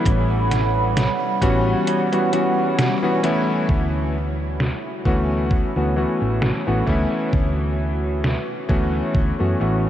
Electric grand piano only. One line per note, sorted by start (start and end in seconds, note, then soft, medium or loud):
0.00 1.36 E3 loud
0.00 1.37 G3 medium
0.00 1.37 B3 medium
0.00 1.38 C#4 medium
0.00 1.38 E4 loud
1.41 2.06 E3 loud
1.41 2.06 G3 medium
1.41 2.06 B3 medium
1.41 2.07 C#4 medium
1.41 2.07 F#4 loud
2.12 2.29 E3 medium
2.12 2.29 G3 medium
2.12 2.29 B3 medium
2.12 2.29 C#4 medium
2.12 2.29 F#4 medium
2.32 2.97 E3 medium
2.32 2.97 G3 medium
2.32 2.98 B3 medium
2.32 2.98 C#4 medium
2.32 2.98 F#4 loud
3.02 3.18 E3 medium
3.02 3.19 G3 medium
3.02 3.19 B3 medium
3.02 3.19 C#4 medium
3.02 3.19 F#4 loud
3.23 4.14 E3 loud
3.23 4.15 A3 medium
3.23 4.15 B3 medium
3.23 4.15 C#4 medium
3.23 4.15 E4 loud
5.05 5.70 E3 medium
5.05 5.70 A3 medium
5.05 5.70 B3 medium
5.05 5.71 C#4 medium
5.05 5.71 F#4 loud
5.76 5.92 E3 medium
5.76 5.93 A3 medium
5.76 5.93 B3 medium
5.76 5.93 C#4 medium
5.76 5.93 F#4 medium
5.96 6.61 E3 medium
5.96 6.61 A3 medium
5.96 6.61 B3 medium
5.96 6.61 C#4 medium
5.96 6.62 F#4 medium
6.67 6.82 E3 medium
6.67 6.83 A3 medium
6.67 6.83 B3 medium
6.67 6.83 C#4 medium
6.67 6.83 F#4 medium
6.87 8.64 E3 medium
6.87 8.64 A3 medium
6.87 8.65 B3 medium
6.87 8.65 C#4 medium
6.87 8.65 E4 loud
8.69 9.33 E3 medium
8.69 9.34 A3 medium
8.69 9.34 B3 medium
8.69 9.34 C#4 medium
8.69 9.34 F#4 loud
9.39 9.56 E3 medium
9.39 9.56 A3 medium
9.39 9.56 B3 medium
9.39 9.56 C#4 medium
9.39 9.57 F#4 medium
9.60 9.89 E3 medium
9.60 9.89 A3 medium
9.60 9.89 B3 medium
9.60 9.89 C#4 medium
9.60 9.89 F#4 medium